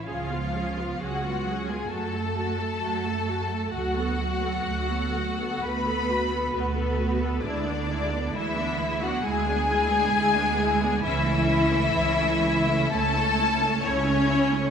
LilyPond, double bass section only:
\new Staff \with { instrumentName = "Double bass section" } { \clef bass \time 4/4 \key a \major \tempo 4 = 66 cis,4 cis,4 fis,4 fis,4 | d,4 d,4 d,4 d,4 | d,4 d,4 d,4 d,4 | cis,4 cis,4 cis,4 cis,4 | }